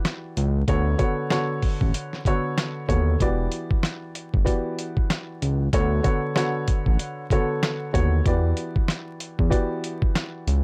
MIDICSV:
0, 0, Header, 1, 4, 480
1, 0, Start_track
1, 0, Tempo, 631579
1, 515, Time_signature, 4, 2, 24, 8
1, 8085, End_track
2, 0, Start_track
2, 0, Title_t, "Upright piano"
2, 0, Program_c, 0, 0
2, 0, Note_on_c, 0, 52, 93
2, 0, Note_on_c, 0, 59, 78
2, 0, Note_on_c, 0, 66, 87
2, 0, Note_on_c, 0, 67, 86
2, 0, Note_on_c, 0, 74, 90
2, 443, Note_off_c, 0, 52, 0
2, 444, Note_off_c, 0, 59, 0
2, 445, Note_off_c, 0, 66, 0
2, 446, Note_off_c, 0, 67, 0
2, 447, Note_off_c, 0, 74, 0
2, 516, Note_on_c, 0, 50, 94
2, 518, Note_on_c, 0, 59, 79
2, 520, Note_on_c, 0, 66, 79
2, 522, Note_on_c, 0, 69, 84
2, 524, Note_on_c, 0, 73, 107
2, 734, Note_off_c, 0, 50, 0
2, 736, Note_off_c, 0, 59, 0
2, 738, Note_off_c, 0, 66, 0
2, 740, Note_off_c, 0, 69, 0
2, 742, Note_off_c, 0, 73, 0
2, 745, Note_on_c, 0, 50, 90
2, 747, Note_on_c, 0, 59, 87
2, 749, Note_on_c, 0, 66, 88
2, 751, Note_on_c, 0, 69, 75
2, 753, Note_on_c, 0, 73, 97
2, 974, Note_off_c, 0, 50, 0
2, 975, Note_off_c, 0, 59, 0
2, 976, Note_off_c, 0, 66, 0
2, 977, Note_off_c, 0, 69, 0
2, 978, Note_off_c, 0, 73, 0
2, 990, Note_on_c, 0, 50, 99
2, 992, Note_on_c, 0, 59, 86
2, 993, Note_on_c, 0, 66, 91
2, 996, Note_on_c, 0, 69, 85
2, 997, Note_on_c, 0, 73, 102
2, 1664, Note_off_c, 0, 50, 0
2, 1665, Note_off_c, 0, 59, 0
2, 1666, Note_off_c, 0, 66, 0
2, 1667, Note_off_c, 0, 69, 0
2, 1668, Note_off_c, 0, 73, 0
2, 1720, Note_on_c, 0, 50, 87
2, 1722, Note_on_c, 0, 59, 85
2, 1725, Note_on_c, 0, 66, 81
2, 1727, Note_on_c, 0, 69, 85
2, 1728, Note_on_c, 0, 73, 98
2, 2166, Note_off_c, 0, 50, 0
2, 2166, Note_off_c, 0, 59, 0
2, 2168, Note_off_c, 0, 66, 0
2, 2169, Note_off_c, 0, 69, 0
2, 2170, Note_off_c, 0, 73, 0
2, 2188, Note_on_c, 0, 50, 74
2, 2190, Note_on_c, 0, 59, 66
2, 2192, Note_on_c, 0, 66, 73
2, 2194, Note_on_c, 0, 69, 69
2, 2196, Note_on_c, 0, 73, 92
2, 2415, Note_off_c, 0, 50, 0
2, 2416, Note_off_c, 0, 59, 0
2, 2417, Note_off_c, 0, 66, 0
2, 2418, Note_off_c, 0, 69, 0
2, 2419, Note_off_c, 0, 73, 0
2, 2441, Note_on_c, 0, 52, 94
2, 2444, Note_on_c, 0, 59, 85
2, 2446, Note_on_c, 0, 66, 82
2, 2448, Note_on_c, 0, 67, 81
2, 2449, Note_on_c, 0, 74, 101
2, 3334, Note_off_c, 0, 52, 0
2, 3335, Note_off_c, 0, 59, 0
2, 3336, Note_off_c, 0, 66, 0
2, 3337, Note_off_c, 0, 67, 0
2, 3338, Note_off_c, 0, 74, 0
2, 3378, Note_on_c, 0, 52, 91
2, 3381, Note_on_c, 0, 59, 83
2, 3383, Note_on_c, 0, 66, 85
2, 3385, Note_on_c, 0, 67, 83
2, 3386, Note_on_c, 0, 74, 93
2, 4283, Note_off_c, 0, 52, 0
2, 4284, Note_off_c, 0, 59, 0
2, 4285, Note_off_c, 0, 66, 0
2, 4286, Note_off_c, 0, 67, 0
2, 4287, Note_off_c, 0, 74, 0
2, 4355, Note_on_c, 0, 50, 94
2, 4357, Note_on_c, 0, 59, 81
2, 4359, Note_on_c, 0, 66, 81
2, 4361, Note_on_c, 0, 69, 89
2, 4364, Note_on_c, 0, 73, 106
2, 4573, Note_off_c, 0, 50, 0
2, 4575, Note_off_c, 0, 59, 0
2, 4577, Note_off_c, 0, 66, 0
2, 4579, Note_off_c, 0, 69, 0
2, 4581, Note_off_c, 0, 73, 0
2, 4584, Note_on_c, 0, 50, 92
2, 4587, Note_on_c, 0, 59, 85
2, 4589, Note_on_c, 0, 66, 84
2, 4590, Note_on_c, 0, 69, 78
2, 4592, Note_on_c, 0, 73, 100
2, 4813, Note_off_c, 0, 50, 0
2, 4815, Note_off_c, 0, 59, 0
2, 4816, Note_off_c, 0, 66, 0
2, 4816, Note_off_c, 0, 69, 0
2, 4817, Note_off_c, 0, 73, 0
2, 4829, Note_on_c, 0, 50, 97
2, 4831, Note_on_c, 0, 59, 88
2, 4833, Note_on_c, 0, 66, 89
2, 4835, Note_on_c, 0, 69, 84
2, 4837, Note_on_c, 0, 73, 102
2, 5504, Note_off_c, 0, 50, 0
2, 5505, Note_off_c, 0, 59, 0
2, 5506, Note_off_c, 0, 66, 0
2, 5507, Note_off_c, 0, 69, 0
2, 5508, Note_off_c, 0, 73, 0
2, 5560, Note_on_c, 0, 50, 89
2, 5562, Note_on_c, 0, 59, 84
2, 5564, Note_on_c, 0, 66, 83
2, 5565, Note_on_c, 0, 69, 89
2, 5567, Note_on_c, 0, 73, 99
2, 6005, Note_off_c, 0, 50, 0
2, 6006, Note_off_c, 0, 59, 0
2, 6007, Note_off_c, 0, 66, 0
2, 6008, Note_off_c, 0, 69, 0
2, 6009, Note_off_c, 0, 73, 0
2, 6026, Note_on_c, 0, 50, 78
2, 6028, Note_on_c, 0, 59, 67
2, 6030, Note_on_c, 0, 66, 73
2, 6032, Note_on_c, 0, 69, 73
2, 6033, Note_on_c, 0, 73, 91
2, 6254, Note_off_c, 0, 50, 0
2, 6255, Note_off_c, 0, 59, 0
2, 6256, Note_off_c, 0, 66, 0
2, 6257, Note_off_c, 0, 69, 0
2, 6258, Note_off_c, 0, 73, 0
2, 6280, Note_on_c, 0, 52, 92
2, 6282, Note_on_c, 0, 59, 84
2, 6284, Note_on_c, 0, 66, 79
2, 6286, Note_on_c, 0, 67, 80
2, 6288, Note_on_c, 0, 74, 101
2, 7173, Note_off_c, 0, 52, 0
2, 7175, Note_off_c, 0, 59, 0
2, 7175, Note_off_c, 0, 66, 0
2, 7176, Note_off_c, 0, 67, 0
2, 7177, Note_off_c, 0, 74, 0
2, 7218, Note_on_c, 0, 52, 91
2, 7220, Note_on_c, 0, 59, 82
2, 7222, Note_on_c, 0, 66, 88
2, 7224, Note_on_c, 0, 67, 84
2, 7226, Note_on_c, 0, 74, 94
2, 8085, Note_off_c, 0, 52, 0
2, 8085, Note_off_c, 0, 59, 0
2, 8085, Note_off_c, 0, 66, 0
2, 8085, Note_off_c, 0, 67, 0
2, 8085, Note_off_c, 0, 74, 0
2, 8085, End_track
3, 0, Start_track
3, 0, Title_t, "Analog synth bass"
3, 0, Program_c, 1, 38
3, 279, Note_on_c, 1, 37, 94
3, 484, Note_off_c, 1, 37, 0
3, 517, Note_on_c, 1, 38, 115
3, 723, Note_off_c, 1, 38, 0
3, 1378, Note_on_c, 1, 33, 85
3, 1463, Note_off_c, 1, 33, 0
3, 2196, Note_on_c, 1, 39, 91
3, 2403, Note_off_c, 1, 39, 0
3, 2438, Note_on_c, 1, 28, 108
3, 2643, Note_off_c, 1, 28, 0
3, 3298, Note_on_c, 1, 31, 88
3, 3383, Note_off_c, 1, 31, 0
3, 4119, Note_on_c, 1, 37, 96
3, 4324, Note_off_c, 1, 37, 0
3, 4357, Note_on_c, 1, 38, 114
3, 4563, Note_off_c, 1, 38, 0
3, 5218, Note_on_c, 1, 33, 83
3, 5303, Note_off_c, 1, 33, 0
3, 6036, Note_on_c, 1, 39, 96
3, 6242, Note_off_c, 1, 39, 0
3, 6277, Note_on_c, 1, 40, 109
3, 6483, Note_off_c, 1, 40, 0
3, 7138, Note_on_c, 1, 40, 90
3, 7223, Note_off_c, 1, 40, 0
3, 7959, Note_on_c, 1, 37, 95
3, 8085, Note_off_c, 1, 37, 0
3, 8085, End_track
4, 0, Start_track
4, 0, Title_t, "Drums"
4, 37, Note_on_c, 9, 38, 115
4, 40, Note_on_c, 9, 42, 90
4, 41, Note_on_c, 9, 37, 102
4, 113, Note_off_c, 9, 38, 0
4, 116, Note_off_c, 9, 42, 0
4, 117, Note_off_c, 9, 37, 0
4, 281, Note_on_c, 9, 42, 66
4, 357, Note_off_c, 9, 42, 0
4, 515, Note_on_c, 9, 36, 119
4, 516, Note_on_c, 9, 42, 91
4, 591, Note_off_c, 9, 36, 0
4, 592, Note_off_c, 9, 42, 0
4, 753, Note_on_c, 9, 42, 65
4, 754, Note_on_c, 9, 36, 94
4, 829, Note_off_c, 9, 42, 0
4, 830, Note_off_c, 9, 36, 0
4, 992, Note_on_c, 9, 38, 111
4, 995, Note_on_c, 9, 37, 90
4, 1005, Note_on_c, 9, 42, 98
4, 1068, Note_off_c, 9, 38, 0
4, 1071, Note_off_c, 9, 37, 0
4, 1081, Note_off_c, 9, 42, 0
4, 1235, Note_on_c, 9, 46, 49
4, 1236, Note_on_c, 9, 36, 91
4, 1311, Note_off_c, 9, 46, 0
4, 1312, Note_off_c, 9, 36, 0
4, 1376, Note_on_c, 9, 36, 94
4, 1452, Note_off_c, 9, 36, 0
4, 1476, Note_on_c, 9, 42, 101
4, 1552, Note_off_c, 9, 42, 0
4, 1619, Note_on_c, 9, 38, 35
4, 1695, Note_off_c, 9, 38, 0
4, 1711, Note_on_c, 9, 36, 92
4, 1717, Note_on_c, 9, 42, 70
4, 1787, Note_off_c, 9, 36, 0
4, 1793, Note_off_c, 9, 42, 0
4, 1958, Note_on_c, 9, 38, 118
4, 1960, Note_on_c, 9, 42, 88
4, 1961, Note_on_c, 9, 37, 97
4, 2034, Note_off_c, 9, 38, 0
4, 2036, Note_off_c, 9, 42, 0
4, 2037, Note_off_c, 9, 37, 0
4, 2194, Note_on_c, 9, 36, 96
4, 2201, Note_on_c, 9, 42, 65
4, 2270, Note_off_c, 9, 36, 0
4, 2277, Note_off_c, 9, 42, 0
4, 2435, Note_on_c, 9, 36, 114
4, 2436, Note_on_c, 9, 42, 92
4, 2511, Note_off_c, 9, 36, 0
4, 2512, Note_off_c, 9, 42, 0
4, 2672, Note_on_c, 9, 42, 64
4, 2748, Note_off_c, 9, 42, 0
4, 2817, Note_on_c, 9, 36, 96
4, 2893, Note_off_c, 9, 36, 0
4, 2911, Note_on_c, 9, 38, 113
4, 2915, Note_on_c, 9, 37, 91
4, 2924, Note_on_c, 9, 42, 97
4, 2987, Note_off_c, 9, 38, 0
4, 2991, Note_off_c, 9, 37, 0
4, 3000, Note_off_c, 9, 42, 0
4, 3155, Note_on_c, 9, 42, 72
4, 3231, Note_off_c, 9, 42, 0
4, 3296, Note_on_c, 9, 36, 92
4, 3372, Note_off_c, 9, 36, 0
4, 3392, Note_on_c, 9, 36, 91
4, 3397, Note_on_c, 9, 42, 97
4, 3468, Note_off_c, 9, 36, 0
4, 3473, Note_off_c, 9, 42, 0
4, 3637, Note_on_c, 9, 42, 68
4, 3713, Note_off_c, 9, 42, 0
4, 3776, Note_on_c, 9, 36, 97
4, 3852, Note_off_c, 9, 36, 0
4, 3877, Note_on_c, 9, 38, 115
4, 3879, Note_on_c, 9, 42, 88
4, 3881, Note_on_c, 9, 37, 102
4, 3953, Note_off_c, 9, 38, 0
4, 3955, Note_off_c, 9, 42, 0
4, 3957, Note_off_c, 9, 37, 0
4, 4121, Note_on_c, 9, 42, 67
4, 4197, Note_off_c, 9, 42, 0
4, 4354, Note_on_c, 9, 36, 120
4, 4356, Note_on_c, 9, 42, 95
4, 4430, Note_off_c, 9, 36, 0
4, 4432, Note_off_c, 9, 42, 0
4, 4592, Note_on_c, 9, 42, 67
4, 4594, Note_on_c, 9, 36, 95
4, 4668, Note_off_c, 9, 42, 0
4, 4670, Note_off_c, 9, 36, 0
4, 4831, Note_on_c, 9, 38, 114
4, 4835, Note_on_c, 9, 37, 92
4, 4844, Note_on_c, 9, 42, 99
4, 4907, Note_off_c, 9, 38, 0
4, 4911, Note_off_c, 9, 37, 0
4, 4920, Note_off_c, 9, 42, 0
4, 5074, Note_on_c, 9, 42, 73
4, 5076, Note_on_c, 9, 36, 94
4, 5150, Note_off_c, 9, 42, 0
4, 5152, Note_off_c, 9, 36, 0
4, 5215, Note_on_c, 9, 36, 94
4, 5291, Note_off_c, 9, 36, 0
4, 5316, Note_on_c, 9, 42, 97
4, 5392, Note_off_c, 9, 42, 0
4, 5551, Note_on_c, 9, 36, 92
4, 5557, Note_on_c, 9, 42, 68
4, 5627, Note_off_c, 9, 36, 0
4, 5633, Note_off_c, 9, 42, 0
4, 5797, Note_on_c, 9, 38, 119
4, 5799, Note_on_c, 9, 42, 89
4, 5801, Note_on_c, 9, 37, 103
4, 5873, Note_off_c, 9, 38, 0
4, 5875, Note_off_c, 9, 42, 0
4, 5877, Note_off_c, 9, 37, 0
4, 6034, Note_on_c, 9, 36, 96
4, 6041, Note_on_c, 9, 42, 67
4, 6110, Note_off_c, 9, 36, 0
4, 6117, Note_off_c, 9, 42, 0
4, 6274, Note_on_c, 9, 36, 123
4, 6275, Note_on_c, 9, 42, 93
4, 6350, Note_off_c, 9, 36, 0
4, 6351, Note_off_c, 9, 42, 0
4, 6512, Note_on_c, 9, 42, 63
4, 6588, Note_off_c, 9, 42, 0
4, 6656, Note_on_c, 9, 36, 99
4, 6732, Note_off_c, 9, 36, 0
4, 6751, Note_on_c, 9, 38, 115
4, 6755, Note_on_c, 9, 37, 91
4, 6764, Note_on_c, 9, 42, 102
4, 6827, Note_off_c, 9, 38, 0
4, 6831, Note_off_c, 9, 37, 0
4, 6840, Note_off_c, 9, 42, 0
4, 6994, Note_on_c, 9, 42, 71
4, 7070, Note_off_c, 9, 42, 0
4, 7135, Note_on_c, 9, 36, 95
4, 7211, Note_off_c, 9, 36, 0
4, 7232, Note_on_c, 9, 36, 91
4, 7236, Note_on_c, 9, 42, 99
4, 7308, Note_off_c, 9, 36, 0
4, 7312, Note_off_c, 9, 42, 0
4, 7477, Note_on_c, 9, 42, 67
4, 7553, Note_off_c, 9, 42, 0
4, 7615, Note_on_c, 9, 36, 93
4, 7691, Note_off_c, 9, 36, 0
4, 7717, Note_on_c, 9, 38, 115
4, 7720, Note_on_c, 9, 42, 90
4, 7721, Note_on_c, 9, 37, 103
4, 7793, Note_off_c, 9, 38, 0
4, 7796, Note_off_c, 9, 42, 0
4, 7797, Note_off_c, 9, 37, 0
4, 7961, Note_on_c, 9, 42, 64
4, 8037, Note_off_c, 9, 42, 0
4, 8085, End_track
0, 0, End_of_file